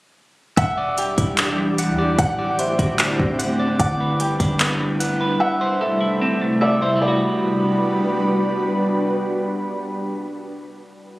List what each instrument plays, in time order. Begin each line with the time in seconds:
0.57 808-style bass E1, ambient pad E3 D4 E4 G4, synth texture G3 G4 D5, clean electric guitar E5, felt piano F#5, kick, closed hi-hat
0.77 clean electric guitar D5
0.98 clean electric guitar G4, felt piano G5, closed hi-hat
1.18 808-style bass E1, clean electric guitar E4, kick, closed hi-hat
1.38 clean electric guitar D4, clap, closed hi-hat
1.58 clean electric guitar G3
1.78 clean electric guitar F#5, closed hi-hat
1.88 808-style bass E2
1.98 clean electric guitar D5
2.18 808-style bass D1, ambient pad D3 A3 C4, synth texture C4, clean electric guitar F#5, felt piano F#5, kick, closed hi-hat
2.39 clean electric guitar D5
2.59 clean electric guitar C5, felt piano E5, closed hi-hat
2.79 808-style bass D1, clean electric guitar F#4, kick, closed hi-hat
2.99 clean electric guitar D4, clap, closed hi-hat
3.19 808-style bass D1, clean electric guitar C4, kick
3.39 clean electric guitar F#5, closed hi-hat
3.59 clean electric guitar D5
3.79 808-style bass G1, ambient pad G3 D4 B4, clean electric guitar D5, felt piano F#5, kick, closed hi-hat
4.00 clean electric guitar B4
4.20 clean electric guitar G4, felt piano G5, closed hi-hat
4.40 808-style bass G1, clean electric guitar D4, kick, closed hi-hat
4.60 clean electric guitar B3, clap, closed hi-hat
4.80 clean electric guitar G3
5.00 clean electric guitar F#5, closed hi-hat
5.21 clean electric guitar B4
5.40 ambient pad C3 A3 E4, clean electric guitar E5, felt piano F#5
5.61 clean electric guitar C5
5.81 clean electric guitar A4, felt piano E5
6.01 clean electric guitar E4
6.22 clean electric guitar C4
6.41 clean electric guitar A3
6.61 felt piano D5, clean electric guitar E5
6.81 clean electric guitar C5, felt piano E5
6.96 clean electric guitar G3
7.02 ambient pad G3 D4 F#4 B4, clean electric guitar B3, felt piano D5
7.08 clean electric guitar F#4